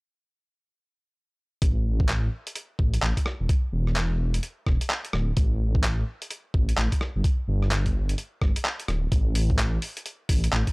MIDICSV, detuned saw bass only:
0, 0, Header, 1, 2, 480
1, 0, Start_track
1, 0, Tempo, 468750
1, 1657, Time_signature, 4, 2, 24, 8
1, 10982, End_track
2, 0, Start_track
2, 0, Title_t, "Detuned saw bass"
2, 0, Program_c, 0, 39
2, 1656, Note_on_c, 0, 33, 95
2, 2337, Note_off_c, 0, 33, 0
2, 2857, Note_on_c, 0, 33, 76
2, 3048, Note_off_c, 0, 33, 0
2, 3096, Note_on_c, 0, 33, 99
2, 3206, Note_off_c, 0, 33, 0
2, 3485, Note_on_c, 0, 28, 89
2, 3551, Note_off_c, 0, 28, 0
2, 3815, Note_on_c, 0, 28, 97
2, 4497, Note_off_c, 0, 28, 0
2, 4777, Note_on_c, 0, 28, 95
2, 4886, Note_off_c, 0, 28, 0
2, 5256, Note_on_c, 0, 26, 80
2, 5448, Note_off_c, 0, 26, 0
2, 5497, Note_on_c, 0, 33, 94
2, 6178, Note_off_c, 0, 33, 0
2, 6697, Note_on_c, 0, 33, 77
2, 6888, Note_off_c, 0, 33, 0
2, 6937, Note_on_c, 0, 33, 103
2, 7046, Note_off_c, 0, 33, 0
2, 7329, Note_on_c, 0, 31, 89
2, 7393, Note_off_c, 0, 31, 0
2, 7658, Note_on_c, 0, 31, 100
2, 8338, Note_off_c, 0, 31, 0
2, 8617, Note_on_c, 0, 31, 98
2, 8726, Note_off_c, 0, 31, 0
2, 9097, Note_on_c, 0, 26, 79
2, 9288, Note_off_c, 0, 26, 0
2, 9338, Note_on_c, 0, 33, 95
2, 10018, Note_off_c, 0, 33, 0
2, 10538, Note_on_c, 0, 33, 77
2, 10728, Note_off_c, 0, 33, 0
2, 10777, Note_on_c, 0, 33, 100
2, 10886, Note_off_c, 0, 33, 0
2, 10982, End_track
0, 0, End_of_file